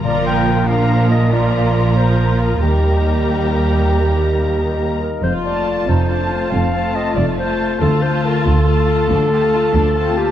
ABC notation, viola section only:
X:1
M:12/8
L:1/8
Q:3/8=93
K:Fmix
V:1 name="Viola section"
[F,B]3 [F,B]3 [F,B]6 | [G,B]8- [G,B]3 z | z [A,F]3 [A,F]3 [A,F]3 [A,F]2 | [A,F] [A,F]3 [A,F]3 [A,F]3 [A,F]2 |]